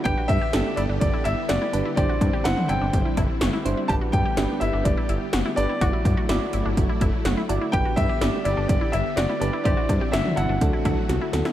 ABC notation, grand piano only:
X:1
M:4/4
L:1/8
Q:1/4=125
K:G
V:1 name="Grand piano"
g e2 d d e d2 | d2 f g2 z3 | a g2 e d2 z d- | d2 z6 |
g e2 d d e d d | d2 e f4 z |]